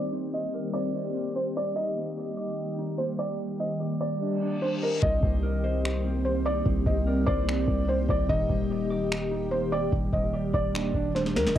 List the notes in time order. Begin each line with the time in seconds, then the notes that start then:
Already playing: D#3 G3 A#3 C4 D#4 G4 A#4 C5 D5
0.13 C4
0.33 C4 D#5
0.54 A#4
0.74 C5 D5
0.95 C4
1.14 C4
1.35 C4 C5
1.55 D5 D#5
1.76 D#3 G3 A#3 D#4 G4 D#5
1.97 A#3
2.17 G4
2.37 D6
2.78 D#4
2.98 A#3 C5
3.19 D5 G5
3.60 D#5
3.80 G4
4.00 D5
4.21 D4, reverse cymbal
4.42 D4
4.62 D4 C5
4.82 A#4 D#5
5.03 C2 D#3 G3 A#3 C4 G4 D#5, kick
5.23 C2 C4, kick
5.43 A#4
5.64 C5
5.85 C4, finger snap
6.05 C4
6.25 C4 C5
6.45 D#4 D5
6.66 C2 C4, kick
6.86 C2 C4 D#5, kick
7.07 A#4
7.27 C2 C5 D5, kick
7.48 C4, finger snap
7.68 C2 C4, kick
7.88 C4 C5
8.09 C2 D5 D#5, kick
8.29 D#1 D#4 D#5, kick
8.50 D#1 A#3, kick
8.70 G4
8.90 D6
9.12 finger snap
9.31 D#4
9.51 A#3 C5
9.72 D5 G5
9.92 D#1, kick
10.13 D#1 D#5, kick
10.33 G4
10.53 D#1 D5, kick
10.74 D4, finger snap
10.94 D#1 D4, kick
11.15 D4 C5, snare
11.26 snare
11.35 D#2 A#4 D#5, snare
11.46 D#1, snare